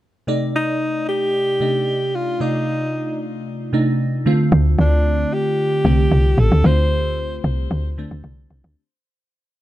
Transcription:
0, 0, Header, 1, 4, 480
1, 0, Start_track
1, 0, Tempo, 530973
1, 248, Time_signature, 4, 2, 24, 8
1, 8691, End_track
2, 0, Start_track
2, 0, Title_t, "Alto saxophone"
2, 0, Program_c, 0, 65
2, 501, Note_on_c, 0, 63, 93
2, 941, Note_off_c, 0, 63, 0
2, 981, Note_on_c, 0, 67, 112
2, 1942, Note_on_c, 0, 65, 95
2, 1956, Note_off_c, 0, 67, 0
2, 2181, Note_on_c, 0, 63, 83
2, 2195, Note_off_c, 0, 65, 0
2, 2895, Note_off_c, 0, 63, 0
2, 4341, Note_on_c, 0, 62, 91
2, 4820, Note_on_c, 0, 67, 105
2, 4834, Note_off_c, 0, 62, 0
2, 5783, Note_on_c, 0, 69, 101
2, 5796, Note_off_c, 0, 67, 0
2, 6021, Note_on_c, 0, 72, 106
2, 6034, Note_off_c, 0, 69, 0
2, 6734, Note_off_c, 0, 72, 0
2, 8691, End_track
3, 0, Start_track
3, 0, Title_t, "FM electric piano"
3, 0, Program_c, 1, 5
3, 246, Note_on_c, 1, 48, 85
3, 250, Note_on_c, 1, 57, 80
3, 255, Note_on_c, 1, 74, 78
3, 259, Note_on_c, 1, 63, 97
3, 389, Control_c, 1, 64, 127
3, 1017, Note_off_c, 1, 48, 0
3, 1019, Note_off_c, 1, 57, 0
3, 1021, Note_off_c, 1, 74, 0
3, 1023, Note_off_c, 1, 63, 0
3, 1447, Note_on_c, 1, 48, 71
3, 1452, Note_on_c, 1, 57, 68
3, 1456, Note_on_c, 1, 62, 67
3, 1461, Note_on_c, 1, 63, 80
3, 2027, Note_off_c, 1, 48, 0
3, 2030, Note_off_c, 1, 57, 0
3, 2032, Note_off_c, 1, 62, 0
3, 2034, Note_off_c, 1, 63, 0
3, 2170, Note_on_c, 1, 48, 74
3, 2173, Note_on_c, 1, 57, 68
3, 2178, Note_on_c, 1, 74, 65
3, 2180, Note_on_c, 1, 65, 78
3, 2939, Note_off_c, 1, 48, 0
3, 2940, Note_off_c, 1, 57, 0
3, 2943, Note_off_c, 1, 74, 0
3, 2944, Note_off_c, 1, 65, 0
3, 3368, Note_on_c, 1, 48, 85
3, 3373, Note_on_c, 1, 57, 82
3, 3376, Note_on_c, 1, 62, 83
3, 3380, Note_on_c, 1, 63, 97
3, 3840, Note_off_c, 1, 57, 0
3, 3848, Note_off_c, 1, 48, 0
3, 3848, Note_on_c, 1, 50, 97
3, 3851, Note_on_c, 1, 57, 89
3, 3852, Note_off_c, 1, 62, 0
3, 3854, Note_off_c, 1, 63, 0
3, 3856, Note_on_c, 1, 60, 84
3, 3860, Control_c, 1, 64, 0
3, 3860, Note_on_c, 1, 65, 103
3, 4027, Control_c, 1, 64, 127
3, 4618, Note_off_c, 1, 50, 0
3, 4619, Note_off_c, 1, 57, 0
3, 4622, Note_off_c, 1, 60, 0
3, 4624, Note_off_c, 1, 65, 0
3, 5288, Note_on_c, 1, 50, 75
3, 5292, Note_on_c, 1, 57, 67
3, 5296, Note_on_c, 1, 60, 68
3, 5300, Note_on_c, 1, 67, 84
3, 5868, Note_off_c, 1, 50, 0
3, 5870, Note_off_c, 1, 57, 0
3, 5872, Note_off_c, 1, 60, 0
3, 5874, Note_off_c, 1, 67, 0
3, 6006, Note_on_c, 1, 50, 74
3, 6011, Note_on_c, 1, 57, 67
3, 6014, Note_on_c, 1, 60, 66
3, 6018, Note_on_c, 1, 65, 76
3, 6777, Note_off_c, 1, 50, 0
3, 6779, Note_off_c, 1, 57, 0
3, 6781, Note_off_c, 1, 60, 0
3, 6783, Note_off_c, 1, 65, 0
3, 7211, Note_on_c, 1, 50, 87
3, 7214, Note_on_c, 1, 57, 81
3, 7217, Note_on_c, 1, 60, 78
3, 7221, Note_on_c, 1, 62, 99
3, 7789, Note_off_c, 1, 50, 0
3, 7791, Note_off_c, 1, 57, 0
3, 7792, Note_off_c, 1, 60, 0
3, 7794, Note_off_c, 1, 62, 0
3, 7939, Control_c, 1, 64, 0
3, 8691, End_track
4, 0, Start_track
4, 0, Title_t, "Log drum bass"
4, 0, Program_c, 2, 39
4, 4087, Note_on_c, 2, 38, 107
4, 4300, Note_off_c, 2, 38, 0
4, 4326, Note_on_c, 2, 38, 98
4, 4753, Note_off_c, 2, 38, 0
4, 5287, Note_on_c, 2, 36, 92
4, 5500, Note_off_c, 2, 36, 0
4, 5528, Note_on_c, 2, 36, 88
4, 5741, Note_off_c, 2, 36, 0
4, 5765, Note_on_c, 2, 33, 93
4, 5877, Note_off_c, 2, 33, 0
4, 5891, Note_on_c, 2, 38, 92
4, 5994, Note_off_c, 2, 38, 0
4, 6005, Note_on_c, 2, 38, 106
4, 6690, Note_off_c, 2, 38, 0
4, 6727, Note_on_c, 2, 36, 100
4, 6941, Note_off_c, 2, 36, 0
4, 6968, Note_on_c, 2, 38, 97
4, 7292, Note_off_c, 2, 38, 0
4, 7333, Note_on_c, 2, 38, 80
4, 7435, Note_off_c, 2, 38, 0
4, 7448, Note_on_c, 2, 36, 94
4, 7661, Note_off_c, 2, 36, 0
4, 7688, Note_on_c, 2, 36, 85
4, 7799, Note_off_c, 2, 36, 0
4, 7812, Note_on_c, 2, 38, 96
4, 7915, Note_off_c, 2, 38, 0
4, 8691, End_track
0, 0, End_of_file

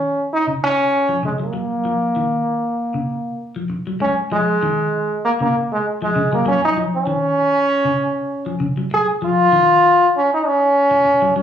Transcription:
0, 0, Header, 1, 4, 480
1, 0, Start_track
1, 0, Tempo, 614125
1, 1200, Time_signature, 4, 2, 24, 8
1, 8930, End_track
2, 0, Start_track
2, 0, Title_t, "Trombone"
2, 0, Program_c, 0, 57
2, 0, Note_on_c, 0, 61, 93
2, 208, Note_off_c, 0, 61, 0
2, 255, Note_on_c, 0, 63, 104
2, 359, Note_off_c, 0, 63, 0
2, 496, Note_on_c, 0, 61, 110
2, 937, Note_off_c, 0, 61, 0
2, 980, Note_on_c, 0, 56, 78
2, 1035, Note_off_c, 0, 56, 0
2, 1118, Note_on_c, 0, 58, 75
2, 2628, Note_off_c, 0, 58, 0
2, 3137, Note_on_c, 0, 61, 96
2, 3243, Note_off_c, 0, 61, 0
2, 3375, Note_on_c, 0, 56, 90
2, 4060, Note_off_c, 0, 56, 0
2, 4100, Note_on_c, 0, 58, 96
2, 4158, Note_off_c, 0, 58, 0
2, 4237, Note_on_c, 0, 58, 90
2, 4341, Note_off_c, 0, 58, 0
2, 4473, Note_on_c, 0, 56, 85
2, 4578, Note_off_c, 0, 56, 0
2, 4715, Note_on_c, 0, 56, 86
2, 4931, Note_off_c, 0, 56, 0
2, 4955, Note_on_c, 0, 58, 82
2, 5047, Note_off_c, 0, 58, 0
2, 5062, Note_on_c, 0, 61, 106
2, 5179, Note_off_c, 0, 61, 0
2, 5194, Note_on_c, 0, 63, 90
2, 5298, Note_off_c, 0, 63, 0
2, 5442, Note_on_c, 0, 61, 106
2, 6701, Note_off_c, 0, 61, 0
2, 6985, Note_on_c, 0, 68, 107
2, 7087, Note_off_c, 0, 68, 0
2, 7229, Note_on_c, 0, 65, 114
2, 7900, Note_off_c, 0, 65, 0
2, 7947, Note_on_c, 0, 61, 102
2, 8056, Note_off_c, 0, 61, 0
2, 8079, Note_on_c, 0, 63, 92
2, 8180, Note_on_c, 0, 61, 108
2, 8192, Note_off_c, 0, 63, 0
2, 8885, Note_off_c, 0, 61, 0
2, 8889, Note_on_c, 0, 61, 91
2, 8930, Note_off_c, 0, 61, 0
2, 8930, End_track
3, 0, Start_track
3, 0, Title_t, "Clean electric guitar"
3, 0, Program_c, 1, 27
3, 368, Note_on_c, 1, 49, 63
3, 566, Note_off_c, 1, 49, 0
3, 851, Note_on_c, 1, 53, 71
3, 939, Note_off_c, 1, 53, 0
3, 962, Note_on_c, 1, 49, 75
3, 1071, Note_off_c, 1, 49, 0
3, 1091, Note_on_c, 1, 54, 66
3, 1179, Note_off_c, 1, 54, 0
3, 1199, Note_on_c, 1, 54, 72
3, 1397, Note_off_c, 1, 54, 0
3, 1446, Note_on_c, 1, 53, 76
3, 1642, Note_off_c, 1, 53, 0
3, 1689, Note_on_c, 1, 51, 77
3, 1884, Note_off_c, 1, 51, 0
3, 2299, Note_on_c, 1, 49, 74
3, 2497, Note_off_c, 1, 49, 0
3, 2783, Note_on_c, 1, 53, 72
3, 2869, Note_off_c, 1, 53, 0
3, 3024, Note_on_c, 1, 54, 67
3, 3110, Note_off_c, 1, 54, 0
3, 3128, Note_on_c, 1, 56, 91
3, 3325, Note_off_c, 1, 56, 0
3, 3373, Note_on_c, 1, 53, 81
3, 3568, Note_off_c, 1, 53, 0
3, 3615, Note_on_c, 1, 51, 94
3, 3809, Note_off_c, 1, 51, 0
3, 4224, Note_on_c, 1, 49, 75
3, 4420, Note_off_c, 1, 49, 0
3, 4704, Note_on_c, 1, 53, 79
3, 4790, Note_off_c, 1, 53, 0
3, 4811, Note_on_c, 1, 49, 85
3, 4919, Note_off_c, 1, 49, 0
3, 4944, Note_on_c, 1, 54, 70
3, 5030, Note_off_c, 1, 54, 0
3, 5047, Note_on_c, 1, 54, 92
3, 5243, Note_off_c, 1, 54, 0
3, 5290, Note_on_c, 1, 53, 81
3, 5484, Note_off_c, 1, 53, 0
3, 5524, Note_on_c, 1, 51, 89
3, 5721, Note_off_c, 1, 51, 0
3, 6134, Note_on_c, 1, 49, 78
3, 6331, Note_off_c, 1, 49, 0
3, 6614, Note_on_c, 1, 53, 71
3, 6701, Note_off_c, 1, 53, 0
3, 6722, Note_on_c, 1, 49, 88
3, 6831, Note_off_c, 1, 49, 0
3, 6858, Note_on_c, 1, 54, 68
3, 6943, Note_off_c, 1, 54, 0
3, 7206, Note_on_c, 1, 53, 90
3, 7399, Note_off_c, 1, 53, 0
3, 7443, Note_on_c, 1, 51, 88
3, 7637, Note_off_c, 1, 51, 0
3, 8769, Note_on_c, 1, 54, 70
3, 8855, Note_off_c, 1, 54, 0
3, 8879, Note_on_c, 1, 54, 80
3, 8930, Note_off_c, 1, 54, 0
3, 8930, End_track
4, 0, Start_track
4, 0, Title_t, "Muted clean electric guitar strokes"
4, 2890, Note_on_c, 9, 29, 75
4, 2968, Note_off_c, 9, 29, 0
4, 6966, Note_on_c, 9, 29, 89
4, 7044, Note_off_c, 9, 29, 0
4, 8527, Note_on_c, 9, 29, 76
4, 8605, Note_off_c, 9, 29, 0
4, 8636, Note_on_c, 9, 29, 84
4, 8714, Note_off_c, 9, 29, 0
4, 8930, End_track
0, 0, End_of_file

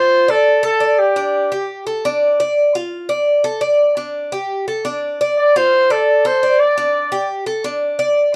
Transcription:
0, 0, Header, 1, 3, 480
1, 0, Start_track
1, 0, Key_signature, -1, "minor"
1, 0, Tempo, 350467
1, 1591, Time_signature, 4, 2, 24, 8
1, 11444, End_track
2, 0, Start_track
2, 0, Title_t, "Trumpet"
2, 0, Program_c, 0, 56
2, 0, Note_on_c, 0, 72, 113
2, 412, Note_on_c, 0, 69, 96
2, 433, Note_off_c, 0, 72, 0
2, 878, Note_off_c, 0, 69, 0
2, 887, Note_on_c, 0, 69, 96
2, 1348, Note_on_c, 0, 67, 80
2, 1369, Note_off_c, 0, 69, 0
2, 2310, Note_off_c, 0, 67, 0
2, 7361, Note_on_c, 0, 74, 97
2, 7613, Note_on_c, 0, 72, 108
2, 7633, Note_off_c, 0, 74, 0
2, 8096, Note_on_c, 0, 69, 89
2, 8117, Note_off_c, 0, 72, 0
2, 8573, Note_on_c, 0, 72, 97
2, 8594, Note_off_c, 0, 69, 0
2, 9033, Note_on_c, 0, 74, 92
2, 9054, Note_off_c, 0, 72, 0
2, 9993, Note_off_c, 0, 74, 0
2, 11444, End_track
3, 0, Start_track
3, 0, Title_t, "Cuban tres"
3, 0, Program_c, 1, 25
3, 0, Note_on_c, 1, 65, 89
3, 373, Note_off_c, 1, 65, 0
3, 388, Note_on_c, 1, 74, 71
3, 855, Note_off_c, 1, 74, 0
3, 863, Note_on_c, 1, 69, 81
3, 1100, Note_off_c, 1, 69, 0
3, 1100, Note_on_c, 1, 74, 69
3, 1571, Note_off_c, 1, 74, 0
3, 1590, Note_on_c, 1, 62, 77
3, 2057, Note_off_c, 1, 62, 0
3, 2079, Note_on_c, 1, 67, 71
3, 2541, Note_off_c, 1, 67, 0
3, 2555, Note_on_c, 1, 69, 68
3, 2787, Note_off_c, 1, 69, 0
3, 2808, Note_on_c, 1, 62, 93
3, 3266, Note_off_c, 1, 62, 0
3, 3286, Note_on_c, 1, 74, 74
3, 3745, Note_off_c, 1, 74, 0
3, 3768, Note_on_c, 1, 65, 81
3, 4227, Note_off_c, 1, 65, 0
3, 4232, Note_on_c, 1, 74, 77
3, 4698, Note_off_c, 1, 74, 0
3, 4713, Note_on_c, 1, 69, 80
3, 4944, Note_on_c, 1, 74, 73
3, 4946, Note_off_c, 1, 69, 0
3, 5415, Note_off_c, 1, 74, 0
3, 5435, Note_on_c, 1, 62, 74
3, 5901, Note_off_c, 1, 62, 0
3, 5920, Note_on_c, 1, 67, 78
3, 6383, Note_off_c, 1, 67, 0
3, 6405, Note_on_c, 1, 69, 66
3, 6633, Note_off_c, 1, 69, 0
3, 6639, Note_on_c, 1, 62, 94
3, 7103, Note_off_c, 1, 62, 0
3, 7134, Note_on_c, 1, 74, 73
3, 7590, Note_off_c, 1, 74, 0
3, 7614, Note_on_c, 1, 65, 84
3, 8071, Note_off_c, 1, 65, 0
3, 8084, Note_on_c, 1, 74, 71
3, 8545, Note_off_c, 1, 74, 0
3, 8559, Note_on_c, 1, 69, 84
3, 8790, Note_off_c, 1, 69, 0
3, 8805, Note_on_c, 1, 74, 68
3, 9266, Note_off_c, 1, 74, 0
3, 9280, Note_on_c, 1, 62, 82
3, 9743, Note_off_c, 1, 62, 0
3, 9748, Note_on_c, 1, 67, 79
3, 10217, Note_off_c, 1, 67, 0
3, 10222, Note_on_c, 1, 69, 71
3, 10460, Note_off_c, 1, 69, 0
3, 10468, Note_on_c, 1, 62, 85
3, 10936, Note_off_c, 1, 62, 0
3, 10942, Note_on_c, 1, 74, 78
3, 11412, Note_off_c, 1, 74, 0
3, 11444, End_track
0, 0, End_of_file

